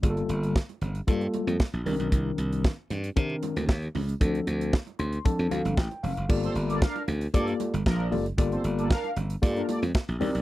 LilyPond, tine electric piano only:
\new Staff \with { instrumentName = "Tine electric piano" } { \time 4/4 \key g \minor \tempo 4 = 115 << { r1 | r1 | r4. c'''8 a''8 f''8 g''8 f''8 | r1 |
r1 | } \\ { <g bes f' aes' a'>4 r4 <g bes f' a'>4 r8 <ees c' d' bes'>8~ | <ees c' d' bes'>4 r4 <ees c' d' bes'>4 r4 | <f c' d' a'>4 r4 <f c' d' a'>4 r4 | <bes f' g' a' d''>4 r4 <bes f' g' a' d''>8 r4 <bes f' g' a' d''>16 r16 |
<bes f' g' a' d''>4 r4 <bes f' g' a' d''>8 r4 <c' ees' g' bes' d''>8 | } >> }